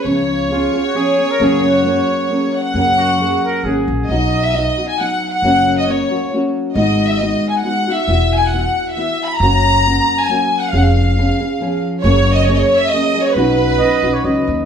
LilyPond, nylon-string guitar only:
\new Staff \with { instrumentName = "Nylon-string guitar" } { \time 3/4 \key fis \major \tempo 4 = 136 <cis eis b cis' gis'>4 <eis b cis' gis'>8 <b cis' gis'>8 <eis b cis' gis'>8 <b cis' gis'>8 | <fis, cis fis ais cis' gis'>4 <fis ais cis' gis'>4 <fis ais cis' gis'>4 | <fis, cis fis ais cis' gis'>4 <fis ais cis' gis'>4 <fis ais cis' gis'>4 | \key b \major <b, fis b dis' fis'>4 <fis b dis' fis'>8 <b dis' fis'>8 <fis b dis' fis'>4 |
<fis, cis fis ais cis' fis'>4 <fis ais cis' fis'>8 <fis ais cis' fis'>8 <fis ais cis' fis'>4 | <gis b dis' fis'>4 <gis b dis' fis'>4 <gis b dis' fis'>8 <b dis' fis'>8 | <e b e' fis'>4 <e b e' fis'>4 <e b e' fis'>4 | <fis, cis fis ais cis' fis'>4 <fis ais cis' fis'>4 <fis ais cis' fis'>4 |
<eis b cis' gis'>4 <eis b cis' gis'>8 <b cis' gis'>8 <eis b cis' gis'>4 | <fis, cis fis ais cis' gis'>4 <fis ais cis' gis'>4 <fis ais cis' gis'>8 <fis ais cis' gis'>8 | <b, fis cis' dis' fis'>4 <fis cis' dis' fis'>8 <cis' dis' fis'>8 <fis cis' dis' fis'>4 | }